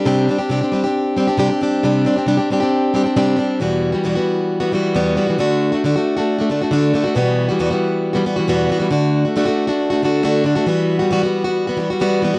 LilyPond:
\new Staff \with { instrumentName = "Steel-string acoustic guitar" } { \time 4/4 \key e \minor \tempo 4 = 136 <c g c' d' g'>8 <g c' d' g'>16 <c' d' g'>16 <c g c' d' g'>16 <c' d' g'>16 <g c' d' g'>16 <c' d' g'>8. <g c' d' g'>16 <c' d' g'>16 <c g c' d' g'>16 <c' d' g'>16 <g c' d' g'>8 | <c g c' d' g'>8 <g c' d' g'>16 <c' d' g'>16 <c g c' d' g'>16 <c' d' g'>16 <g c' d' g'>16 <c' d' g'>8. <g c' d' g'>16 <c' d' g'>16 <c g c' d' g'>8 <g c' d' g'>8 | <e, b, e g b fis'>8. <e g b fis'>16 <e, b, e g b fis'>16 <e g b fis'>4 <e g b fis'>16 <e g b fis'>8 <e, b, e g b fis'>8 <e g b fis'>16 <e g b fis'>16 | <d a d' fis'>8. <a d' fis'>16 <d a d' fis'>16 <a d' fis'>8 <a d' fis'>8 <a d' fis'>16 <d a d' fis'>16 <a d' fis'>16 <d a d' fis'>8 <d a d' fis'>16 <a d' fis'>16 |
<e, b, e g b fis'>8. <e g b fis'>16 <e, b, e g b fis'>16 <e g b fis'>4 <e g b fis'>16 <e g b fis'>16 <e g b fis'>16 <e, b, e g b fis'>8 <e g b fis'>16 <e g b fis'>16 | <d a d' fis'>8. <a d' fis'>16 <d a d' fis'>16 <a d' fis'>8 <a d' fis'>8 <a d' fis'>16 <d a d' fis'>8 <d a d' fis'>8 <d a d' fis'>16 <a d' fis'>16 | <e g b fis'>8. <g b fis'>16 <e g b fis'>16 <g b fis'>8 <g b fis'>8 <g b fis'>16 <e g b fis'>16 <g b fis'>16 <e g b fis'>8 <e g b fis'>16 <b fis'>16 | }